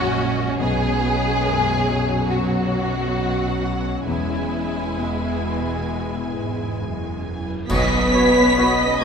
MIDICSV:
0, 0, Header, 1, 13, 480
1, 0, Start_track
1, 0, Tempo, 860832
1, 337, Time_signature, 4, 2, 24, 8
1, 1781, Tempo, 902256
1, 4181, Tempo, 874636
1, 4914, End_track
2, 0, Start_track
2, 0, Title_t, "Flute"
2, 0, Program_c, 0, 73
2, 4172, Note_on_c, 0, 83, 87
2, 4911, Note_off_c, 0, 83, 0
2, 4914, End_track
3, 0, Start_track
3, 0, Title_t, "Violin section"
3, 0, Program_c, 1, 48
3, 0, Note_on_c, 1, 75, 60
3, 340, Note_off_c, 1, 75, 0
3, 340, Note_on_c, 1, 73, 60
3, 1759, Note_off_c, 1, 73, 0
3, 1786, Note_on_c, 1, 78, 53
3, 2255, Note_off_c, 1, 78, 0
3, 2255, Note_on_c, 1, 80, 51
3, 4051, Note_off_c, 1, 80, 0
3, 4173, Note_on_c, 1, 95, 88
3, 4875, Note_off_c, 1, 95, 0
3, 4914, End_track
4, 0, Start_track
4, 0, Title_t, "Oboe"
4, 0, Program_c, 2, 68
4, 4178, Note_on_c, 2, 73, 59
4, 4265, Note_off_c, 2, 73, 0
4, 4424, Note_on_c, 2, 73, 49
4, 4512, Note_off_c, 2, 73, 0
4, 4662, Note_on_c, 2, 73, 55
4, 4750, Note_off_c, 2, 73, 0
4, 4914, End_track
5, 0, Start_track
5, 0, Title_t, "Clarinet"
5, 0, Program_c, 3, 71
5, 4172, Note_on_c, 3, 66, 57
5, 4260, Note_off_c, 3, 66, 0
5, 4422, Note_on_c, 3, 66, 50
5, 4510, Note_off_c, 3, 66, 0
5, 4661, Note_on_c, 3, 66, 49
5, 4749, Note_off_c, 3, 66, 0
5, 4897, Note_on_c, 3, 66, 52
5, 4914, Note_off_c, 3, 66, 0
5, 4914, End_track
6, 0, Start_track
6, 0, Title_t, "Harp"
6, 0, Program_c, 4, 46
6, 0, Note_on_c, 4, 42, 60
6, 0, Note_on_c, 4, 56, 48
6, 0, Note_on_c, 4, 58, 37
6, 0, Note_on_c, 4, 61, 48
6, 0, Note_on_c, 4, 66, 51
6, 0, Note_on_c, 4, 68, 45
6, 85, Note_off_c, 4, 56, 0
6, 91, Note_on_c, 4, 56, 49
6, 178, Note_off_c, 4, 58, 0
6, 205, Note_off_c, 4, 66, 0
6, 211, Note_on_c, 4, 66, 46
6, 324, Note_on_c, 4, 47, 59
6, 351, Note_off_c, 4, 56, 0
6, 354, Note_off_c, 4, 42, 0
6, 355, Note_off_c, 4, 68, 0
6, 448, Note_on_c, 4, 59, 43
6, 555, Note_off_c, 4, 66, 0
6, 561, Note_on_c, 4, 66, 47
6, 673, Note_off_c, 4, 61, 0
6, 679, Note_on_c, 4, 61, 46
6, 796, Note_off_c, 4, 59, 0
6, 802, Note_on_c, 4, 59, 47
6, 917, Note_off_c, 4, 61, 0
6, 924, Note_on_c, 4, 61, 39
6, 1031, Note_off_c, 4, 59, 0
6, 1038, Note_on_c, 4, 59, 41
6, 1130, Note_off_c, 4, 61, 0
6, 1157, Note_off_c, 4, 66, 0
6, 1163, Note_on_c, 4, 66, 48
6, 1283, Note_on_c, 4, 54, 47
6, 1398, Note_off_c, 4, 59, 0
6, 1405, Note_on_c, 4, 59, 39
6, 1518, Note_off_c, 4, 66, 0
6, 1525, Note_on_c, 4, 66, 44
6, 1649, Note_on_c, 4, 61, 43
6, 1769, Note_off_c, 4, 59, 0
6, 1776, Note_on_c, 4, 59, 44
6, 1886, Note_off_c, 4, 61, 0
6, 1892, Note_on_c, 4, 61, 35
6, 2002, Note_off_c, 4, 59, 0
6, 2009, Note_on_c, 4, 59, 42
6, 2094, Note_off_c, 4, 61, 0
6, 2122, Note_off_c, 4, 66, 0
6, 2128, Note_on_c, 4, 66, 39
6, 2246, Note_on_c, 4, 52, 46
6, 2265, Note_off_c, 4, 47, 0
6, 2267, Note_off_c, 4, 54, 0
6, 2269, Note_off_c, 4, 66, 0
6, 2368, Note_on_c, 4, 64, 37
6, 2491, Note_on_c, 4, 71, 40
6, 2616, Note_on_c, 4, 68, 42
6, 2729, Note_off_c, 4, 64, 0
6, 2736, Note_on_c, 4, 64, 40
6, 2853, Note_on_c, 4, 66, 35
6, 2967, Note_off_c, 4, 64, 0
6, 2974, Note_on_c, 4, 64, 36
6, 3060, Note_off_c, 4, 66, 0
6, 3087, Note_off_c, 4, 71, 0
6, 3094, Note_on_c, 4, 71, 41
6, 3209, Note_off_c, 4, 59, 0
6, 3215, Note_on_c, 4, 59, 41
6, 3329, Note_off_c, 4, 64, 0
6, 3335, Note_on_c, 4, 64, 38
6, 3445, Note_off_c, 4, 71, 0
6, 3451, Note_on_c, 4, 71, 41
6, 3569, Note_off_c, 4, 68, 0
6, 3576, Note_on_c, 4, 68, 40
6, 3689, Note_off_c, 4, 64, 0
6, 3695, Note_on_c, 4, 64, 39
6, 3816, Note_on_c, 4, 66, 34
6, 3931, Note_off_c, 4, 64, 0
6, 3938, Note_on_c, 4, 64, 40
6, 4023, Note_off_c, 4, 66, 0
6, 4051, Note_off_c, 4, 71, 0
6, 4057, Note_on_c, 4, 71, 41
6, 4179, Note_on_c, 4, 47, 56
6, 4198, Note_off_c, 4, 52, 0
6, 4199, Note_off_c, 4, 64, 0
6, 4199, Note_off_c, 4, 68, 0
6, 4300, Note_on_c, 4, 61, 46
6, 4418, Note_off_c, 4, 71, 0
6, 4425, Note_on_c, 4, 71, 49
6, 4537, Note_on_c, 4, 73, 51
6, 4658, Note_on_c, 4, 78, 54
6, 4778, Note_on_c, 4, 83, 55
6, 4892, Note_off_c, 4, 78, 0
6, 4914, Note_off_c, 4, 47, 0
6, 4914, Note_off_c, 4, 59, 0
6, 4914, Note_off_c, 4, 61, 0
6, 4914, Note_off_c, 4, 71, 0
6, 4914, Note_off_c, 4, 73, 0
6, 4914, Note_off_c, 4, 83, 0
6, 4914, End_track
7, 0, Start_track
7, 0, Title_t, "Violin section"
7, 0, Program_c, 5, 48
7, 0, Note_on_c, 5, 66, 96
7, 324, Note_on_c, 5, 68, 101
7, 330, Note_off_c, 5, 66, 0
7, 1264, Note_off_c, 5, 68, 0
7, 1278, Note_on_c, 5, 66, 75
7, 2236, Note_on_c, 5, 64, 68
7, 2246, Note_off_c, 5, 66, 0
7, 3670, Note_off_c, 5, 64, 0
7, 4172, Note_on_c, 5, 59, 61
7, 4179, Note_on_c, 5, 71, 62
7, 4290, Note_off_c, 5, 59, 0
7, 4305, Note_on_c, 5, 61, 55
7, 4426, Note_off_c, 5, 61, 0
7, 4437, Note_on_c, 5, 59, 55
7, 4552, Note_off_c, 5, 59, 0
7, 4560, Note_on_c, 5, 61, 53
7, 4673, Note_off_c, 5, 61, 0
7, 4679, Note_on_c, 5, 59, 58
7, 4791, Note_off_c, 5, 59, 0
7, 4794, Note_on_c, 5, 61, 53
7, 4906, Note_off_c, 5, 61, 0
7, 4914, Note_off_c, 5, 71, 0
7, 4914, End_track
8, 0, Start_track
8, 0, Title_t, "Viola section"
8, 0, Program_c, 6, 48
8, 0, Note_on_c, 6, 61, 72
8, 331, Note_on_c, 6, 59, 64
8, 338, Note_off_c, 6, 61, 0
8, 798, Note_off_c, 6, 59, 0
8, 803, Note_on_c, 6, 56, 62
8, 1045, Note_off_c, 6, 56, 0
8, 1045, Note_on_c, 6, 54, 54
8, 2243, Note_on_c, 6, 56, 53
8, 2250, Note_off_c, 6, 54, 0
8, 3914, Note_off_c, 6, 56, 0
8, 4173, Note_on_c, 6, 75, 63
8, 4404, Note_off_c, 6, 75, 0
8, 4433, Note_on_c, 6, 73, 58
8, 4663, Note_on_c, 6, 75, 74
8, 4670, Note_off_c, 6, 73, 0
8, 4914, Note_off_c, 6, 75, 0
8, 4914, End_track
9, 0, Start_track
9, 0, Title_t, "French horn section"
9, 0, Program_c, 7, 60
9, 0, Note_on_c, 7, 56, 59
9, 0, Note_on_c, 7, 61, 63
9, 310, Note_off_c, 7, 56, 0
9, 339, Note_on_c, 7, 54, 63
9, 2149, Note_off_c, 7, 54, 0
9, 2240, Note_on_c, 7, 56, 53
9, 2715, Note_off_c, 7, 61, 0
9, 2721, Note_on_c, 7, 59, 52
9, 3977, Note_off_c, 7, 56, 0
9, 3997, Note_off_c, 7, 59, 0
9, 4185, Note_on_c, 7, 71, 87
9, 4882, Note_off_c, 7, 71, 0
9, 4914, End_track
10, 0, Start_track
10, 0, Title_t, "Cello section"
10, 0, Program_c, 8, 48
10, 0, Note_on_c, 8, 46, 56
10, 332, Note_off_c, 8, 46, 0
10, 336, Note_on_c, 8, 47, 63
10, 2230, Note_off_c, 8, 47, 0
10, 2246, Note_on_c, 8, 40, 51
10, 2675, Note_off_c, 8, 40, 0
10, 2732, Note_on_c, 8, 47, 60
10, 3436, Note_off_c, 8, 47, 0
10, 3461, Note_on_c, 8, 44, 55
10, 3700, Note_off_c, 8, 44, 0
10, 3704, Note_on_c, 8, 42, 50
10, 4177, Note_on_c, 8, 59, 83
10, 4184, Note_off_c, 8, 42, 0
10, 4878, Note_off_c, 8, 59, 0
10, 4914, End_track
11, 0, Start_track
11, 0, Title_t, "Grand piano"
11, 0, Program_c, 10, 0
11, 0, Control_c, 10, 64, 127
11, 0, Note_on_c, 10, 42, 53
11, 0, Note_on_c, 10, 61, 44
11, 0, Note_on_c, 10, 66, 44
11, 316, Note_off_c, 10, 61, 0
11, 317, Note_off_c, 10, 66, 0
11, 336, Note_on_c, 10, 35, 53
11, 346, Control_c, 10, 64, 0
11, 351, Note_off_c, 10, 42, 0
11, 419, Control_c, 10, 64, 127
11, 813, Note_on_c, 10, 42, 45
11, 2230, Note_off_c, 10, 35, 0
11, 2249, Note_on_c, 10, 40, 44
11, 2253, Note_off_c, 10, 42, 0
11, 2263, Control_c, 10, 64, 0
11, 2368, Control_c, 10, 64, 127
11, 2730, Note_on_c, 10, 47, 38
11, 4158, Note_off_c, 10, 40, 0
11, 4178, Note_off_c, 10, 47, 0
11, 4180, Note_on_c, 10, 35, 52
11, 4190, Control_c, 10, 64, 0
11, 4286, Control_c, 10, 64, 127
11, 4669, Note_on_c, 10, 66, 45
11, 4671, Note_on_c, 10, 71, 49
11, 4914, Note_off_c, 10, 35, 0
11, 4914, Note_off_c, 10, 66, 0
11, 4914, Note_off_c, 10, 71, 0
11, 4914, End_track
12, 0, Start_track
12, 0, Title_t, "Double bass section"
12, 0, Program_c, 11, 48
12, 0, Note_on_c, 11, 34, 55
12, 338, Note_off_c, 11, 34, 0
12, 341, Note_on_c, 11, 35, 64
12, 2232, Note_off_c, 11, 35, 0
12, 2251, Note_on_c, 11, 28, 55
12, 4049, Note_off_c, 11, 28, 0
12, 4183, Note_on_c, 11, 35, 70
12, 4588, Note_off_c, 11, 35, 0
12, 4914, End_track
13, 0, Start_track
13, 0, Title_t, "Drums"
13, 4177, Note_on_c, 9, 35, 69
13, 4177, Note_on_c, 9, 49, 67
13, 4232, Note_off_c, 9, 35, 0
13, 4232, Note_off_c, 9, 49, 0
13, 4914, End_track
0, 0, End_of_file